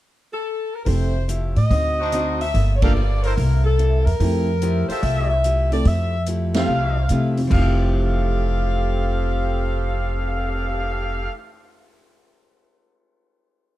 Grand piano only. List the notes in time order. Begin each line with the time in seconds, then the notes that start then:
0.86 C4 E4 G4 A4
2.82 A#3 D4 F4 A4
4.21 A3 C4 E4 G4
5.71 A3 C4 E4 A4
6.54 A3 C4 E4 G4
7.10 A3 C4 E4 G4
7.38 F2
7.44 F3
7.51 A3
7.57 E3
7.64 G4